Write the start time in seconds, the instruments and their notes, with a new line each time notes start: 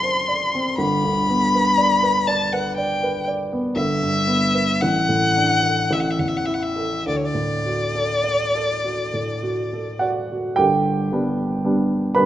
Already playing: grand piano F#1 F#2 C4 A4 C5 D5 A5, violin C6
0.03 grand piano C5
0.28 grand piano D5
0.55 grand piano C4
0.78 grand piano G1, violin B5
1.04 grand piano D2
1.29 grand piano B3
1.55 grand piano B4
1.78 grand piano D5
2.03 grand piano B4
2.27 grand piano D5, violin A5
2.53 grand piano B4, violin F#5
2.76 grand piano D5, violin G5
3.03 grand piano B4
3.28 grand piano D5
3.53 grand piano B3
3.76 grand piano G1, violin E5
4.02 grand piano G2
4.27 grand piano B3
4.55 grand piano B4
4.81 grand piano A1, violin F#5
5.09 grand piano A2
5.36 grand piano D4
5.63 grand piano A4
5.91 grand piano A1, violin E5
6.00 violin F#5
6.10 violin E5
6.19 grand piano E2, violin F#5
6.28 violin E5
6.37 violin F#5
6.45 grand piano E4, violin E5
6.54 violin F#5
6.63 violin E5
6.76 grand piano A4
7.06 grand piano D2, violin D5
7.16 violin C#5
7.25 violin D5
7.34 grand piano A2
7.66 grand piano F#4
7.95 grand piano A4
8.24 grand piano D5
8.55 grand piano A4
8.84 grand piano F#4
9.13 grand piano A2
9.43 grand piano F#4
9.73 grand piano A4
9.99 grand piano F#4 D5 F#5
10.32 grand piano F#4
10.56 grand piano G1 G4 G5
11.12 grand piano G3 B3 D4
11.64 grand piano G3 B3 D4
12.15 grand piano G3 B3 D4 B4 B5